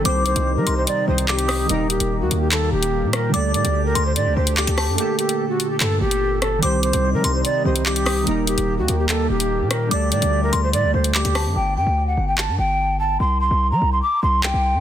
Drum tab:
HH |x-xx--x-x--xxxo-|x-xx--x-x--x--x-|x-xx--x-x--xxxo-|x-xx--x-x--x--x-|
CP |------------x---|--------x-------|------------x---|--------x-------|
SD |--------------r-|--------------r-|--------------r-|--------------r-|

HH |x-xx--x-x--xxxo-|x-xx--x-x--x--x-|x-xx--x-x--xxxo-|----------------|
CP |------------x---|--------x-------|------------x---|--------x-------|
SD |--------------r-|--------------r-|--------------r-|----------------|

HH |----------------|
CP |------------x---|
SD |----------------|